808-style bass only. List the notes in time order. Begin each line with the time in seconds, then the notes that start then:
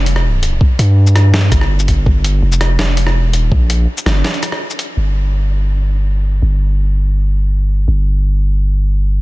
Already playing: F1
0.79 G2
1.52 G1
2.06 G1
2.42 F1
3.18 E1
3.52 A#1
4.06 G1
4.97 G1
6.42 G1
7.88 G1